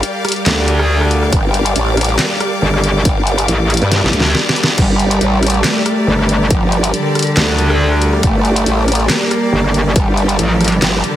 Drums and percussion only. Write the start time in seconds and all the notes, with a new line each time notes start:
0.03 closed hi-hat
0.25 cross-stick, closed hi-hat
0.28 closed hi-hat
0.32 closed hi-hat
0.36 closed hi-hat
0.46 snare, clap, closed hi-hat
0.68 closed hi-hat
0.79 cross-stick
1.01 cross-stick
1.11 closed hi-hat
1.23 cross-stick
1.33 kick, closed hi-hat
1.54 closed hi-hat
1.66 closed hi-hat
1.76 closed hi-hat
1.97 cross-stick, closed hi-hat
2.01 closed hi-hat
2.04 closed hi-hat
2.19 snare, clap, closed hi-hat
2.40 cross-stick, closed hi-hat
2.74 cross-stick
2.84 closed hi-hat
3.05 kick, closed hi-hat
3.27 closed hi-hat
3.38 closed hi-hat
3.48 closed hi-hat
3.70 cross-stick, closed hi-hat
3.74 closed hi-hat
3.77 closed hi-hat
3.82 closed hi-hat
3.92 snare, closed hi-hat
4.06 snare
4.13 closed hi-hat
4.20 snare
4.35 snare
4.49 snare
4.56 closed hi-hat
4.63 snare
4.78 kick, closed hi-hat, crash
4.99 closed hi-hat
5.11 closed hi-hat
5.21 closed hi-hat
5.43 cross-stick, closed hi-hat
5.46 closed hi-hat
5.50 closed hi-hat
5.54 closed hi-hat
5.64 snare, clap, closed hi-hat
5.86 cross-stick, closed hi-hat
6.19 cross-stick
6.29 closed hi-hat
6.51 kick, closed hi-hat
6.72 closed hi-hat
6.84 closed hi-hat
6.94 closed hi-hat
7.15 cross-stick, closed hi-hat
7.19 closed hi-hat
7.22 closed hi-hat
7.27 closed hi-hat
7.37 snare, clap, closed hi-hat
7.58 closed hi-hat
7.70 cross-stick
7.92 cross-stick
8.02 closed hi-hat
8.13 cross-stick
8.23 kick, closed hi-hat
8.45 closed hi-hat
8.56 closed hi-hat
8.66 closed hi-hat
8.88 cross-stick, closed hi-hat
8.92 closed hi-hat
8.95 closed hi-hat
9.00 closed hi-hat
9.10 snare, clap, closed hi-hat
9.31 cross-stick, closed hi-hat
9.64 cross-stick
9.74 closed hi-hat
9.96 kick, closed hi-hat
10.17 closed hi-hat
10.29 closed hi-hat
10.39 closed hi-hat
10.61 cross-stick, closed hi-hat
10.64 closed hi-hat
10.68 closed hi-hat
10.82 snare, clap, closed hi-hat
11.04 closed hi-hat